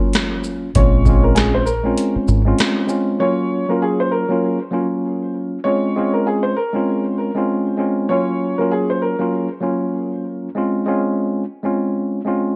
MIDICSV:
0, 0, Header, 1, 6, 480
1, 0, Start_track
1, 0, Key_signature, -5, "minor"
1, 0, Tempo, 612245
1, 591, Time_signature, 4, 2, 24, 8
1, 9846, End_track
2, 0, Start_track
2, 0, Title_t, "Upright piano"
2, 0, Program_c, 0, 0
2, 591, Note_on_c, 0, 73, 105
2, 949, Note_off_c, 0, 73, 0
2, 969, Note_on_c, 0, 70, 74
2, 1059, Note_off_c, 0, 70, 0
2, 1060, Note_on_c, 0, 68, 95
2, 1192, Note_off_c, 0, 68, 0
2, 1210, Note_on_c, 0, 72, 81
2, 1299, Note_on_c, 0, 70, 84
2, 1300, Note_off_c, 0, 72, 0
2, 1663, Note_off_c, 0, 70, 0
2, 2509, Note_on_c, 0, 73, 100
2, 2868, Note_off_c, 0, 73, 0
2, 2896, Note_on_c, 0, 70, 69
2, 2983, Note_off_c, 0, 70, 0
2, 2998, Note_on_c, 0, 68, 88
2, 3121, Note_off_c, 0, 68, 0
2, 3136, Note_on_c, 0, 72, 79
2, 3223, Note_off_c, 0, 72, 0
2, 3226, Note_on_c, 0, 70, 83
2, 3587, Note_off_c, 0, 70, 0
2, 4423, Note_on_c, 0, 73, 100
2, 4785, Note_off_c, 0, 73, 0
2, 4812, Note_on_c, 0, 70, 78
2, 4901, Note_off_c, 0, 70, 0
2, 4915, Note_on_c, 0, 68, 93
2, 5040, Note_off_c, 0, 68, 0
2, 5041, Note_on_c, 0, 72, 80
2, 5135, Note_off_c, 0, 72, 0
2, 5148, Note_on_c, 0, 70, 89
2, 5508, Note_off_c, 0, 70, 0
2, 6344, Note_on_c, 0, 73, 100
2, 6705, Note_off_c, 0, 73, 0
2, 6726, Note_on_c, 0, 70, 74
2, 6818, Note_off_c, 0, 70, 0
2, 6832, Note_on_c, 0, 68, 98
2, 6959, Note_off_c, 0, 68, 0
2, 6976, Note_on_c, 0, 72, 77
2, 7063, Note_off_c, 0, 72, 0
2, 7071, Note_on_c, 0, 70, 83
2, 7429, Note_off_c, 0, 70, 0
2, 9846, End_track
3, 0, Start_track
3, 0, Title_t, "Tine electric piano"
3, 0, Program_c, 1, 4
3, 0, Note_on_c, 1, 54, 89
3, 0, Note_on_c, 1, 58, 86
3, 0, Note_on_c, 1, 61, 89
3, 0, Note_on_c, 1, 65, 99
3, 533, Note_off_c, 1, 54, 0
3, 538, Note_off_c, 1, 58, 0
3, 541, Note_off_c, 1, 61, 0
3, 545, Note_off_c, 1, 65, 0
3, 591, Note_on_c, 1, 56, 99
3, 598, Note_on_c, 1, 60, 84
3, 606, Note_on_c, 1, 61, 78
3, 614, Note_on_c, 1, 65, 99
3, 815, Note_off_c, 1, 56, 0
3, 819, Note_off_c, 1, 60, 0
3, 822, Note_off_c, 1, 61, 0
3, 827, Note_off_c, 1, 65, 0
3, 830, Note_on_c, 1, 56, 94
3, 838, Note_on_c, 1, 60, 86
3, 846, Note_on_c, 1, 61, 85
3, 854, Note_on_c, 1, 65, 101
3, 1279, Note_off_c, 1, 56, 0
3, 1283, Note_off_c, 1, 60, 0
3, 1287, Note_off_c, 1, 61, 0
3, 1291, Note_off_c, 1, 65, 0
3, 1439, Note_on_c, 1, 56, 91
3, 1447, Note_on_c, 1, 60, 93
3, 1454, Note_on_c, 1, 61, 91
3, 1462, Note_on_c, 1, 65, 99
3, 1880, Note_off_c, 1, 56, 0
3, 1884, Note_off_c, 1, 60, 0
3, 1888, Note_off_c, 1, 61, 0
3, 1892, Note_off_c, 1, 65, 0
3, 1922, Note_on_c, 1, 56, 89
3, 1930, Note_on_c, 1, 60, 89
3, 1938, Note_on_c, 1, 61, 84
3, 1944, Note_on_c, 1, 65, 105
3, 2241, Note_off_c, 1, 56, 0
3, 2246, Note_off_c, 1, 60, 0
3, 2250, Note_off_c, 1, 61, 0
3, 2250, Note_on_c, 1, 56, 73
3, 2253, Note_off_c, 1, 65, 0
3, 2258, Note_on_c, 1, 60, 71
3, 2265, Note_on_c, 1, 61, 73
3, 2272, Note_on_c, 1, 65, 81
3, 2485, Note_off_c, 1, 56, 0
3, 2488, Note_off_c, 1, 60, 0
3, 2492, Note_off_c, 1, 61, 0
3, 2496, Note_off_c, 1, 65, 0
3, 2504, Note_on_c, 1, 54, 100
3, 2511, Note_on_c, 1, 58, 93
3, 2519, Note_on_c, 1, 61, 87
3, 2526, Note_on_c, 1, 65, 102
3, 2854, Note_off_c, 1, 54, 0
3, 2858, Note_off_c, 1, 58, 0
3, 2862, Note_off_c, 1, 61, 0
3, 2866, Note_off_c, 1, 65, 0
3, 2889, Note_on_c, 1, 54, 95
3, 2897, Note_on_c, 1, 58, 86
3, 2905, Note_on_c, 1, 61, 81
3, 2912, Note_on_c, 1, 65, 100
3, 3325, Note_off_c, 1, 54, 0
3, 3329, Note_off_c, 1, 58, 0
3, 3333, Note_off_c, 1, 61, 0
3, 3337, Note_off_c, 1, 65, 0
3, 3362, Note_on_c, 1, 54, 96
3, 3370, Note_on_c, 1, 58, 86
3, 3377, Note_on_c, 1, 61, 83
3, 3385, Note_on_c, 1, 65, 96
3, 3585, Note_off_c, 1, 54, 0
3, 3588, Note_off_c, 1, 58, 0
3, 3592, Note_off_c, 1, 61, 0
3, 3596, Note_off_c, 1, 65, 0
3, 3692, Note_on_c, 1, 54, 90
3, 3700, Note_on_c, 1, 58, 84
3, 3708, Note_on_c, 1, 61, 88
3, 3715, Note_on_c, 1, 65, 95
3, 4374, Note_off_c, 1, 54, 0
3, 4378, Note_off_c, 1, 58, 0
3, 4382, Note_off_c, 1, 61, 0
3, 4385, Note_off_c, 1, 65, 0
3, 4429, Note_on_c, 1, 56, 104
3, 4437, Note_on_c, 1, 60, 86
3, 4445, Note_on_c, 1, 61, 78
3, 4453, Note_on_c, 1, 65, 101
3, 4654, Note_off_c, 1, 56, 0
3, 4658, Note_off_c, 1, 60, 0
3, 4662, Note_off_c, 1, 61, 0
3, 4666, Note_off_c, 1, 65, 0
3, 4673, Note_on_c, 1, 56, 97
3, 4680, Note_on_c, 1, 60, 87
3, 4688, Note_on_c, 1, 61, 86
3, 4695, Note_on_c, 1, 65, 105
3, 5120, Note_off_c, 1, 56, 0
3, 5124, Note_off_c, 1, 60, 0
3, 5128, Note_off_c, 1, 61, 0
3, 5131, Note_off_c, 1, 65, 0
3, 5279, Note_on_c, 1, 56, 94
3, 5286, Note_on_c, 1, 60, 95
3, 5295, Note_on_c, 1, 61, 93
3, 5302, Note_on_c, 1, 65, 102
3, 5720, Note_off_c, 1, 56, 0
3, 5724, Note_off_c, 1, 60, 0
3, 5728, Note_off_c, 1, 61, 0
3, 5732, Note_off_c, 1, 65, 0
3, 5761, Note_on_c, 1, 56, 93
3, 5769, Note_on_c, 1, 60, 92
3, 5776, Note_on_c, 1, 61, 88
3, 5784, Note_on_c, 1, 65, 111
3, 6082, Note_off_c, 1, 56, 0
3, 6086, Note_off_c, 1, 60, 0
3, 6089, Note_off_c, 1, 61, 0
3, 6091, Note_on_c, 1, 56, 73
3, 6093, Note_off_c, 1, 65, 0
3, 6098, Note_on_c, 1, 60, 73
3, 6106, Note_on_c, 1, 61, 73
3, 6114, Note_on_c, 1, 65, 86
3, 6325, Note_off_c, 1, 56, 0
3, 6329, Note_off_c, 1, 60, 0
3, 6333, Note_off_c, 1, 61, 0
3, 6337, Note_off_c, 1, 65, 0
3, 6344, Note_on_c, 1, 54, 107
3, 6351, Note_on_c, 1, 58, 94
3, 6359, Note_on_c, 1, 61, 94
3, 6366, Note_on_c, 1, 65, 107
3, 6694, Note_off_c, 1, 54, 0
3, 6698, Note_off_c, 1, 58, 0
3, 6702, Note_off_c, 1, 61, 0
3, 6706, Note_off_c, 1, 65, 0
3, 6731, Note_on_c, 1, 54, 98
3, 6739, Note_on_c, 1, 58, 88
3, 6747, Note_on_c, 1, 61, 86
3, 6754, Note_on_c, 1, 65, 101
3, 7167, Note_off_c, 1, 54, 0
3, 7171, Note_off_c, 1, 58, 0
3, 7174, Note_off_c, 1, 61, 0
3, 7178, Note_off_c, 1, 65, 0
3, 7203, Note_on_c, 1, 54, 98
3, 7211, Note_on_c, 1, 58, 87
3, 7219, Note_on_c, 1, 61, 84
3, 7226, Note_on_c, 1, 65, 99
3, 7425, Note_off_c, 1, 54, 0
3, 7429, Note_off_c, 1, 58, 0
3, 7433, Note_off_c, 1, 61, 0
3, 7436, Note_off_c, 1, 65, 0
3, 7533, Note_on_c, 1, 54, 95
3, 7540, Note_on_c, 1, 58, 88
3, 7548, Note_on_c, 1, 61, 93
3, 7555, Note_on_c, 1, 65, 102
3, 8214, Note_off_c, 1, 54, 0
3, 8218, Note_off_c, 1, 58, 0
3, 8222, Note_off_c, 1, 61, 0
3, 8226, Note_off_c, 1, 65, 0
3, 8271, Note_on_c, 1, 56, 101
3, 8278, Note_on_c, 1, 60, 86
3, 8286, Note_on_c, 1, 61, 81
3, 8293, Note_on_c, 1, 65, 105
3, 8495, Note_off_c, 1, 56, 0
3, 8499, Note_off_c, 1, 60, 0
3, 8503, Note_off_c, 1, 61, 0
3, 8506, Note_off_c, 1, 65, 0
3, 8512, Note_on_c, 1, 56, 96
3, 8520, Note_on_c, 1, 60, 91
3, 8527, Note_on_c, 1, 61, 90
3, 8535, Note_on_c, 1, 65, 107
3, 8960, Note_off_c, 1, 56, 0
3, 8964, Note_off_c, 1, 60, 0
3, 8967, Note_off_c, 1, 61, 0
3, 8971, Note_off_c, 1, 65, 0
3, 9119, Note_on_c, 1, 56, 93
3, 9127, Note_on_c, 1, 60, 90
3, 9134, Note_on_c, 1, 61, 95
3, 9142, Note_on_c, 1, 65, 103
3, 9560, Note_off_c, 1, 56, 0
3, 9564, Note_off_c, 1, 60, 0
3, 9568, Note_off_c, 1, 61, 0
3, 9572, Note_off_c, 1, 65, 0
3, 9601, Note_on_c, 1, 56, 94
3, 9609, Note_on_c, 1, 60, 89
3, 9617, Note_on_c, 1, 61, 89
3, 9624, Note_on_c, 1, 65, 111
3, 9846, Note_off_c, 1, 56, 0
3, 9846, Note_off_c, 1, 60, 0
3, 9846, Note_off_c, 1, 61, 0
3, 9846, Note_off_c, 1, 65, 0
3, 9846, End_track
4, 0, Start_track
4, 0, Title_t, "Fingered electric bass"
4, 0, Program_c, 2, 33
4, 590, Note_on_c, 2, 34, 111
4, 1519, Note_off_c, 2, 34, 0
4, 1791, Note_on_c, 2, 32, 94
4, 1975, Note_off_c, 2, 32, 0
4, 9846, End_track
5, 0, Start_track
5, 0, Title_t, "Muted fingered electric bass strokes"
5, 1692, Note_on_c, 9, 29, 50
5, 1770, Note_off_c, 9, 29, 0
5, 9846, End_track
6, 0, Start_track
6, 0, Title_t, "Drums"
6, 105, Note_on_c, 9, 42, 75
6, 118, Note_on_c, 9, 38, 119
6, 120, Note_on_c, 9, 37, 96
6, 183, Note_off_c, 9, 42, 0
6, 196, Note_off_c, 9, 38, 0
6, 198, Note_off_c, 9, 37, 0
6, 343, Note_on_c, 9, 82, 49
6, 422, Note_off_c, 9, 82, 0
6, 587, Note_on_c, 9, 42, 93
6, 590, Note_on_c, 9, 36, 119
6, 665, Note_off_c, 9, 42, 0
6, 669, Note_off_c, 9, 36, 0
6, 826, Note_on_c, 9, 36, 94
6, 829, Note_on_c, 9, 82, 52
6, 905, Note_off_c, 9, 36, 0
6, 907, Note_off_c, 9, 82, 0
6, 1066, Note_on_c, 9, 42, 81
6, 1078, Note_on_c, 9, 38, 106
6, 1079, Note_on_c, 9, 37, 87
6, 1144, Note_off_c, 9, 42, 0
6, 1156, Note_off_c, 9, 38, 0
6, 1158, Note_off_c, 9, 37, 0
6, 1308, Note_on_c, 9, 82, 58
6, 1387, Note_off_c, 9, 82, 0
6, 1549, Note_on_c, 9, 42, 101
6, 1628, Note_off_c, 9, 42, 0
6, 1788, Note_on_c, 9, 82, 57
6, 1866, Note_off_c, 9, 82, 0
6, 2026, Note_on_c, 9, 42, 74
6, 2040, Note_on_c, 9, 38, 118
6, 2042, Note_on_c, 9, 37, 91
6, 2105, Note_off_c, 9, 42, 0
6, 2118, Note_off_c, 9, 38, 0
6, 2120, Note_off_c, 9, 37, 0
6, 2266, Note_on_c, 9, 82, 50
6, 2344, Note_off_c, 9, 82, 0
6, 9846, End_track
0, 0, End_of_file